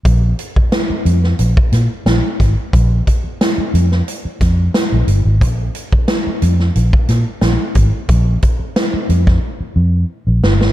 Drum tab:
HH |x-x-x-x-x-x-x-x-|x-x-x-x-x-x-x-x-|x-x-x-x-x-x-x-x-|x-x-x-x---------|
SD |----o--o--o-o-o-|----o--o--o-o---|----o--o--o-o---|----o--o------oo|
BD |o--o-----o----o-|o-o-------o-----|o--o-----o----o-|o-o----o--------|